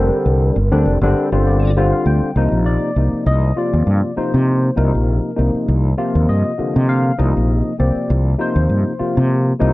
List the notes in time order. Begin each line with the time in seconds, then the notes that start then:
Already playing: D3 G3 C4 D4 A#4
0.26 C2
0.56 G1
0.72 D2 D3 G3 C4 D4
0.86 F1
1.01 G1 D3 G3 C4 D4
1.32 G1 D3 G3 C4 F4
1.47 D5
1.77 D3 G3 C4 F4 C5
1.93 F5
2.06 D2 G5
2.22 muted fretless electric bass stroke
2.36 C2 C3 F3 A#3 D#4
2.52 A#1
2.66 D5
2.96 C2 C3 F3 A#3 D#4
3.13 muted fretless electric bass stroke
3.26 C2 D#5
3.56 C3 F3 A#3 F4 D5
3.73 D#2
3.87 G2
4.16 C3 F3 A#3 D#4 C5, muted fretless electric bass stroke
4.34 C3
4.76 C2 C3 F3 A#3 D#4 A#4
4.95 A#1
5.36 C2 C3 F3 A#3 D#4
5.54 muted fretless electric bass stroke
5.68 C2
5.98 C3 F3 A#3 F4
6.15 D#2
6.29 G2 D#5
6.58 C3 D3 F3 A#3, muted fretless electric bass stroke
6.76 C3
6.89 F5
7.18 C2 C3 F3 A#3 D#4 D#5
7.37 A#1
7.79 C2 C3 F3 A#3 C4 D5
7.96 muted fretless electric bass stroke
8.10 C2
8.38 C3 F3 A#3 D#4 C5
8.56 D#2
8.69 G2
8.99 C3 F3 A#3 F4, muted fretless electric bass stroke
9.17 C3
9.60 C2 C3 F3 A#3 D#4